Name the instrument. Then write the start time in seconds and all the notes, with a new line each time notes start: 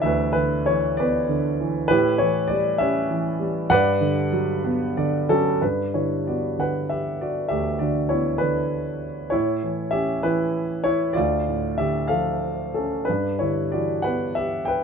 grand piano
Already playing: G2 D3 E3 B3 D4 E4 B4 C#5 D5
0.02 D2 E5
0.06 B4
0.33 D3 B4
0.66 E3 C#5
0.97 B3 B4 D5
1.29 D3
1.61 E3
1.88 A2 E4 G4 B4
2.18 E3 C#5
2.48 G3 D5
2.78 C#4 G4 C#5 E5
3.10 E3
3.39 G3
3.70 G2 B4 D5 F#5
4.00 D3
4.32 F#3
4.64 B3
4.97 D3 D5
5.29 F#3 C#4 A4
5.62 G2 D4 B4
5.94 D3 E4 C#5
6.26 B3 F#4 D5
6.58 D3 B4 F#5
6.89 G4 E5
7.21 F#4 D5
7.48 D2 G4 E5
7.79 D3 F#4 D5
8.09 B3 E4 C#5
8.38 D3 D4 B4
9.30 A2 E4 C#5
9.63 E3
9.91 C#4 G4 E5
10.23 E3 E4 B4
10.84 E4 C#5
11.13 D2 F4 D5
11.48 A2
11.78 D3 G4 E5
12.08 F3 A4 F5
12.74 C#4 A4
13.05 D4 B4
13.09 G2
13.39 D3 E4 C#5
13.72 E3 F#4 D5
14.02 B3 B4 F#5
14.35 G4 E5
14.65 B4 G5